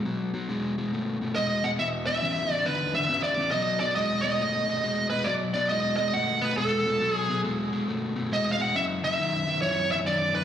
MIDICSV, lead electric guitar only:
0, 0, Header, 1, 2, 480
1, 0, Start_track
1, 0, Tempo, 435098
1, 52, Time_signature, 4, 2, 24, 8
1, 11519, End_track
2, 0, Start_track
2, 0, Title_t, "Lead electric guitar"
2, 0, Program_c, 0, 29
2, 1494, Note_on_c, 0, 75, 86
2, 1809, Note_on_c, 0, 78, 93
2, 1813, Note_off_c, 0, 75, 0
2, 1865, Note_off_c, 0, 78, 0
2, 1975, Note_on_c, 0, 76, 86
2, 2059, Note_off_c, 0, 76, 0
2, 2279, Note_on_c, 0, 76, 93
2, 2786, Note_off_c, 0, 76, 0
2, 2786, Note_on_c, 0, 74, 93
2, 2930, Note_on_c, 0, 71, 91
2, 2949, Note_off_c, 0, 74, 0
2, 3228, Note_off_c, 0, 71, 0
2, 3251, Note_on_c, 0, 76, 86
2, 3561, Note_off_c, 0, 76, 0
2, 3565, Note_on_c, 0, 74, 84
2, 3869, Note_off_c, 0, 74, 0
2, 3873, Note_on_c, 0, 75, 84
2, 4187, Note_off_c, 0, 75, 0
2, 4192, Note_on_c, 0, 74, 81
2, 4353, Note_off_c, 0, 74, 0
2, 4362, Note_on_c, 0, 75, 88
2, 4643, Note_off_c, 0, 75, 0
2, 4656, Note_on_c, 0, 75, 88
2, 5583, Note_off_c, 0, 75, 0
2, 5623, Note_on_c, 0, 71, 84
2, 5784, Note_on_c, 0, 74, 93
2, 5806, Note_off_c, 0, 71, 0
2, 5871, Note_off_c, 0, 74, 0
2, 6109, Note_on_c, 0, 74, 78
2, 6272, Note_off_c, 0, 74, 0
2, 6276, Note_on_c, 0, 75, 85
2, 6569, Note_off_c, 0, 75, 0
2, 6582, Note_on_c, 0, 75, 76
2, 6765, Note_off_c, 0, 75, 0
2, 6768, Note_on_c, 0, 78, 96
2, 7078, Note_on_c, 0, 71, 83
2, 7088, Note_off_c, 0, 78, 0
2, 7249, Note_off_c, 0, 71, 0
2, 7253, Note_on_c, 0, 69, 70
2, 7871, Note_off_c, 0, 69, 0
2, 7871, Note_on_c, 0, 68, 70
2, 8167, Note_off_c, 0, 68, 0
2, 9191, Note_on_c, 0, 75, 90
2, 9398, Note_off_c, 0, 75, 0
2, 9403, Note_on_c, 0, 77, 66
2, 9480, Note_off_c, 0, 77, 0
2, 9504, Note_on_c, 0, 78, 99
2, 9650, Note_off_c, 0, 78, 0
2, 9662, Note_on_c, 0, 76, 97
2, 9745, Note_off_c, 0, 76, 0
2, 9975, Note_on_c, 0, 76, 86
2, 10605, Note_off_c, 0, 76, 0
2, 10609, Note_on_c, 0, 73, 94
2, 10936, Note_off_c, 0, 73, 0
2, 10940, Note_on_c, 0, 76, 94
2, 10995, Note_off_c, 0, 76, 0
2, 11103, Note_on_c, 0, 74, 85
2, 11386, Note_off_c, 0, 74, 0
2, 11415, Note_on_c, 0, 71, 98
2, 11519, Note_off_c, 0, 71, 0
2, 11519, End_track
0, 0, End_of_file